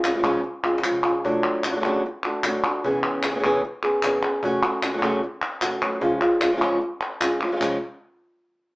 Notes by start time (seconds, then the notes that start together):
0.03 G#3 C#4 F4, cajon slap, clap
0.14 F3 G#3 C#4 F4
0.19 F3 G#3 C#4 F4
0.23 C#3 F3 G#3 C#4 F4, cajon bass
0.43 muted nylon-string guitar stroke
0.63 G#3 C#4 F4, cajon slap
0.78 cajon slap
0.83 F3 G#3 C#4 F4, clap
0.92 cajon bass
1.03 G#3 C#4 F4, cajon bass, clap
1.24 F#3 A3 D4 F#4, cajon bass
1.45 cajon slap
1.64 A3 D4 F#4, cajon slap, clap
1.71 F#3 A3 D4 F#4
1.76 F#3 A3 D4 F#4
1.80 F#3 A3 D4 F#4
1.85 C#3 F#3 A3 D4 F#4, cajon bass, cajon slap
2.05 muted nylon-string guitar stroke
2.25 A3 D4 F#4
2.43 F#3 A3 D4 F#4, cajon slap, clap
2.64 A3 D4 F#4, clap
2.84 C#3 E3 B3 C#4 G#4, cajon bass
3.04 cajon slap
3.23 B3 C#4 G#4, cajon slap, clap
3.30 E3 B3 C#4 G#4
3.35 E3 B3 C#4 G#4
3.39 E3 B3 C#4 G#4
3.44 C#3 E3 B3 C#4 G#4, cajon bass
3.64 muted nylon-string guitar stroke
3.83 B3 C#4 G#4
4.03 E3 B3 C#4 G#4, cajon slap, clap
4.23 B3 C#4 G#4, cajon slap, clap
4.43 C#3 F#3 A3 C#4 F#4, cajon bass
4.63 A3 C#4 F#4, cajon slap
4.82 A3 C#4 F#4, cajon slap, clap
4.93 F#3 A3 C#4 F#4
4.98 F#3 A3 C#4 F#4
5.02 C#3 F#3 A3 C#4 F#4, cajon bass
5.23 muted nylon-string guitar stroke
5.61 A3 C#4 F#4, cajon bass, cajon slap, clap
5.82 F#3 A3 C#4 F#4, cajon slap, clap
6.00 C#3 F3 G#3 C#4 F4, cajon bass
6.21 G#3 C#4 F4
6.41 G#3 C#4 F4, cajon slap, clap
6.52 F3 G#3 C#4 F4
6.56 F3 G#3 C#4 F4
6.61 C#3 F3 G#3 C#4 F4, cajon bass, cajon slap, clap
6.81 muted nylon-string guitar stroke
7.21 G#3 C#4 F4, cajon slap, clap
7.41 F3 G#3 C#4 F4, cajon slap, clap
7.47 F3 G#3 C#4 F4
7.52 F3 G#3 C#4 F4
7.56 F3 G#3 C#4 F4
7.60 C#3 F3 G#3 C#4 F4, cajon bass, clap